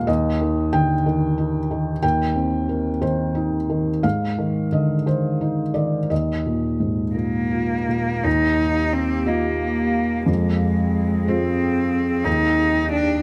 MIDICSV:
0, 0, Header, 1, 4, 480
1, 0, Start_track
1, 0, Key_signature, -3, "major"
1, 0, Tempo, 654308
1, 56, Time_signature, 6, 3, 24, 8
1, 2456, Tempo, 691244
1, 4856, Tempo, 726392
1, 5816, Tempo, 684151
1, 6296, Tempo, 663717
1, 9392, End_track
2, 0, Start_track
2, 0, Title_t, "Ambient pad"
2, 0, Program_c, 0, 92
2, 5805, Note_on_c, 0, 67, 54
2, 5811, Note_on_c, 0, 58, 54
2, 5811, Note_on_c, 0, 77, 53
2, 7230, Note_off_c, 0, 67, 0
2, 7233, Note_off_c, 0, 58, 0
2, 7245, Note_on_c, 0, 60, 55
2, 7253, Note_on_c, 0, 68, 53
2, 8667, Note_off_c, 0, 77, 0
2, 8693, Note_off_c, 0, 68, 0
2, 8693, Note_on_c, 0, 67, 58
2, 8697, Note_on_c, 0, 79, 57
2, 9392, Note_off_c, 0, 60, 0
2, 9392, Note_off_c, 0, 67, 0
2, 9392, Note_off_c, 0, 79, 0
2, 9392, End_track
3, 0, Start_track
3, 0, Title_t, "Cello"
3, 0, Program_c, 1, 42
3, 5086, Note_on_c, 1, 58, 53
3, 5805, Note_on_c, 1, 63, 62
3, 5815, Note_off_c, 1, 58, 0
3, 6289, Note_on_c, 1, 60, 62
3, 6300, Note_off_c, 1, 63, 0
3, 6536, Note_on_c, 1, 58, 49
3, 6546, Note_off_c, 1, 60, 0
3, 7258, Note_off_c, 1, 58, 0
3, 7262, Note_on_c, 1, 56, 59
3, 7989, Note_on_c, 1, 60, 63
3, 8000, Note_off_c, 1, 56, 0
3, 8686, Note_on_c, 1, 63, 65
3, 8697, Note_off_c, 1, 60, 0
3, 9171, Note_off_c, 1, 63, 0
3, 9176, Note_on_c, 1, 62, 70
3, 9392, Note_off_c, 1, 62, 0
3, 9392, End_track
4, 0, Start_track
4, 0, Title_t, "Felt piano"
4, 0, Program_c, 2, 0
4, 0, Control_c, 2, 64, 127
4, 0, Note_on_c, 2, 44, 37
4, 0, Note_on_c, 2, 46, 35
4, 0, Note_on_c, 2, 77, 64
4, 53, Note_on_c, 2, 75, 67
4, 59, Note_on_c, 2, 39, 50
4, 70, Control_c, 2, 64, 0
4, 75, Note_off_c, 2, 44, 0
4, 77, Note_off_c, 2, 46, 0
4, 78, Note_off_c, 2, 77, 0
4, 204, Control_c, 2, 64, 127
4, 302, Note_on_c, 2, 51, 37
4, 504, Note_off_c, 2, 75, 0
4, 534, Note_on_c, 2, 79, 72
4, 535, Note_on_c, 2, 50, 35
4, 680, Note_off_c, 2, 51, 0
4, 772, Note_off_c, 2, 50, 0
4, 778, Note_on_c, 2, 51, 37
4, 1011, Note_on_c, 2, 63, 39
4, 1156, Note_off_c, 2, 51, 0
4, 1253, Note_on_c, 2, 51, 37
4, 1393, Note_off_c, 2, 63, 0
4, 1459, Note_off_c, 2, 79, 0
4, 1461, Note_off_c, 2, 39, 0
4, 1486, Note_on_c, 2, 79, 69
4, 1488, Note_on_c, 2, 39, 42
4, 1501, Control_c, 2, 64, 0
4, 1614, Control_c, 2, 64, 127
4, 1635, Note_off_c, 2, 51, 0
4, 1730, Note_on_c, 2, 60, 35
4, 1973, Note_on_c, 2, 58, 34
4, 2115, Note_off_c, 2, 60, 0
4, 2180, Note_off_c, 2, 79, 0
4, 2212, Note_on_c, 2, 51, 35
4, 2213, Note_off_c, 2, 58, 0
4, 2213, Note_on_c, 2, 72, 47
4, 2456, Note_on_c, 2, 63, 38
4, 2600, Note_off_c, 2, 51, 0
4, 2697, Note_on_c, 2, 51, 38
4, 2840, Note_off_c, 2, 63, 0
4, 2908, Note_off_c, 2, 39, 0
4, 2909, Note_off_c, 2, 72, 0
4, 2931, Note_on_c, 2, 77, 62
4, 2936, Note_on_c, 2, 44, 43
4, 2937, Note_off_c, 2, 51, 0
4, 2949, Control_c, 2, 64, 0
4, 3067, Control_c, 2, 64, 127
4, 3176, Note_on_c, 2, 51, 32
4, 3381, Note_off_c, 2, 77, 0
4, 3411, Note_on_c, 2, 50, 31
4, 3413, Note_on_c, 2, 75, 42
4, 3555, Note_off_c, 2, 51, 0
4, 3633, Note_off_c, 2, 75, 0
4, 3647, Note_on_c, 2, 51, 30
4, 3649, Note_off_c, 2, 50, 0
4, 3651, Note_on_c, 2, 72, 46
4, 3888, Note_on_c, 2, 63, 32
4, 4031, Note_off_c, 2, 51, 0
4, 4102, Note_off_c, 2, 72, 0
4, 4117, Note_on_c, 2, 74, 45
4, 4126, Note_on_c, 2, 51, 28
4, 4275, Note_off_c, 2, 63, 0
4, 4345, Note_off_c, 2, 44, 0
4, 4349, Note_off_c, 2, 74, 0
4, 4368, Note_on_c, 2, 75, 42
4, 4371, Note_off_c, 2, 51, 0
4, 4374, Note_on_c, 2, 39, 30
4, 4386, Control_c, 2, 64, 0
4, 4507, Control_c, 2, 64, 127
4, 4619, Note_on_c, 2, 46, 27
4, 4853, Note_on_c, 2, 44, 28
4, 4998, Note_off_c, 2, 46, 0
4, 5082, Note_on_c, 2, 46, 29
4, 5088, Note_off_c, 2, 44, 0
4, 5320, Note_on_c, 2, 65, 30
4, 5474, Note_off_c, 2, 46, 0
4, 5548, Note_off_c, 2, 75, 0
4, 5572, Note_on_c, 2, 46, 30
4, 5717, Note_off_c, 2, 65, 0
4, 5790, Note_off_c, 2, 39, 0
4, 5808, Note_on_c, 2, 39, 40
4, 5813, Note_off_c, 2, 46, 0
4, 5828, Control_c, 2, 64, 0
4, 5933, Control_c, 2, 64, 127
4, 6525, Note_on_c, 2, 65, 34
4, 6530, Note_on_c, 2, 75, 35
4, 7229, Note_off_c, 2, 65, 0
4, 7231, Note_off_c, 2, 75, 0
4, 7232, Note_off_c, 2, 39, 0
4, 7250, Note_on_c, 2, 41, 42
4, 7277, Control_c, 2, 64, 0
4, 7404, Control_c, 2, 64, 127
4, 7986, Note_on_c, 2, 65, 34
4, 7986, Note_on_c, 2, 72, 38
4, 8662, Note_off_c, 2, 41, 0
4, 8668, Note_off_c, 2, 65, 0
4, 8668, Note_off_c, 2, 72, 0
4, 8689, Note_on_c, 2, 39, 43
4, 8713, Control_c, 2, 64, 0
4, 8816, Control_c, 2, 64, 127
4, 9392, Note_off_c, 2, 39, 0
4, 9392, End_track
0, 0, End_of_file